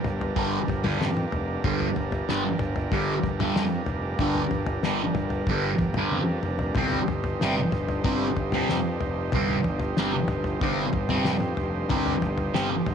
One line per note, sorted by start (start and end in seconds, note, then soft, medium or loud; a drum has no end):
0.00 6.75 G2 medium
0.00 12.95 G3 medium
0.00 6.74 D4 medium
0.00 6.73 A#4 medium
0.04 0.29 G1 medium
0.04 floor tom medium
0.04 mid tom medium
0.21 floor tom medium
0.36 0.61 G1 medium
0.36 0.57 G2 medium
0.36 0.57 D3 medium
0.36 0.57 G3 loud
0.36 kick loud
0.68 0.93 G1 medium
0.68 kick medium
0.68 floor tom medium
0.84 1.05 G2 medium
0.84 1.05 D3 medium
0.84 1.05 G3 loud
0.84 floor tom medium
0.84 mid tom medium
0.99 1.24 F2 medium
0.99 snare medium
0.99 mid tom medium
1.17 mid tom medium
1.32 1.57 F1 medium
1.32 floor tom medium
1.64 1.89 G1 loud
1.64 1.85 G2 medium
1.64 1.85 D3 medium
1.64 1.86 G3 medium
1.64 kick loud
1.64 floor tom medium
1.80 floor tom medium
1.96 2.21 G1 medium
1.96 floor tom medium
2.12 floor tom medium
2.29 2.53 G1 medium
2.29 2.44 G2 medium
2.29 2.44 D3 medium
2.29 2.43 G3 loud
2.29 snare medium
2.44 muted distorted electric guitar stroke medium
2.59 2.85 G1 medium
2.59 floor tom medium
2.59 mid tom medium
2.76 floor tom medium
2.92 3.17 G1 loud
2.92 3.13 G2 medium
2.92 3.13 D3 medium
2.92 3.14 G3 medium
2.92 kick loud
3.23 3.48 G1 medium
3.23 kick medium
3.23 floor tom medium
3.40 3.62 G2 medium
3.40 3.61 D3 medium
3.40 3.61 G3 medium
3.40 floor tom medium
3.40 mid tom medium
3.55 3.80 F2 medium
3.55 snare medium
3.86 4.13 F1 medium
3.86 floor tom medium
4.19 4.44 G1 medium
4.19 4.41 G2 medium
4.19 4.41 D3 medium
4.19 4.42 G3 medium
4.19 kick loud
4.19 floor tom medium
4.35 floor tom medium
4.51 4.76 G1 medium
4.51 floor tom medium
4.66 floor tom loud
4.83 5.08 G1 medium
4.83 5.00 G2 medium
4.83 5.01 D3 medium
4.83 5.01 G3 loud
4.83 snare medium
5.02 muted distorted electric guitar stroke soft
5.15 5.41 G1 medium
5.15 floor tom medium
5.15 mid tom medium
5.30 floor tom medium
5.47 5.72 G1 loud
5.47 5.70 G2 medium
5.47 5.70 D3 medium
5.47 5.71 G3 loud
5.47 kick loud
5.78 6.04 G1 medium
5.78 kick medium
5.78 floor tom medium
5.94 6.18 G2 medium
5.94 6.18 D3 medium
5.94 6.18 G3 medium
5.94 floor tom medium
5.94 mid tom medium
6.11 6.37 F2 medium
6.11 high tom medium
6.43 6.69 F1 medium
6.43 mid tom medium
6.59 floor tom medium
6.75 7.01 G1 medium
6.75 12.95 G2 medium
6.75 6.98 C3 medium
6.75 6.98 G3 medium
6.75 6.98 C4 loud
6.75 12.95 D#4 medium
6.75 12.95 C5 medium
6.75 kick loud
6.75 floor tom medium
6.92 floor tom medium
7.08 7.34 G1 medium
7.08 floor tom medium
7.24 floor tom medium
7.41 7.66 G1 medium
7.41 7.58 C3 medium
7.41 7.57 G3 medium
7.41 7.56 C4 loud
7.41 snare medium
7.57 muted distorted electric guitar stroke medium
7.72 7.98 G1 medium
7.72 floor tom medium
7.72 mid tom medium
7.89 floor tom medium
8.04 8.30 G1 medium
8.04 8.26 C3 medium
8.04 8.26 G3 medium
8.04 8.26 C4 medium
8.04 kick loud
8.36 8.62 G1 medium
8.36 kick medium
8.36 floor tom medium
8.52 8.75 C3 medium
8.52 8.75 G3 loud
8.52 8.75 C4 loud
8.52 floor tom medium
8.52 mid tom medium
8.69 8.95 F2 medium
8.69 snare medium
9.01 9.27 F1 medium
9.01 floor tom medium
9.32 9.58 G1 loud
9.32 9.55 C3 medium
9.32 9.55 G3 medium
9.32 9.55 C4 medium
9.32 kick loud
9.32 floor tom medium
9.48 floor tom medium
9.64 9.91 G1 medium
9.64 floor tom medium
9.80 floor tom medium
9.97 10.23 G1 medium
9.97 10.14 C3 medium
9.97 10.13 G3 medium
9.97 10.12 C4 medium
9.97 snare medium
10.14 muted distorted electric guitar stroke soft
10.28 10.55 G1 medium
10.28 floor tom medium
10.28 mid tom medium
10.44 floor tom medium
10.61 10.87 G1 medium
10.61 10.83 C3 medium
10.61 10.83 G3 medium
10.61 10.84 C4 loud
10.61 kick loud
10.93 11.19 G1 medium
10.93 kick medium
10.93 floor tom medium
11.09 11.32 C3 medium
11.09 11.32 G3 medium
11.09 11.31 C4 loud
11.09 floor tom medium
11.09 mid tom medium
11.24 11.51 F2 medium
11.24 snare medium
11.24 mid tom medium
11.40 mid tom medium
11.57 11.84 F1 medium
11.57 floor tom medium
11.89 12.15 G1 medium
11.89 12.11 C3 medium
11.89 12.11 G3 medium
11.89 12.12 C4 medium
11.89 kick loud
11.89 floor tom medium
12.06 floor tom medium
12.22 12.48 G1 medium
12.22 floor tom medium
12.38 floor tom medium
12.54 12.80 G1 medium
12.54 12.70 C3 medium
12.54 12.70 G3 loud
12.54 12.69 C4 loud
12.54 snare medium
12.71 muted distorted electric guitar stroke medium
12.86 12.95 G1 medium
12.86 floor tom medium
12.86 mid tom medium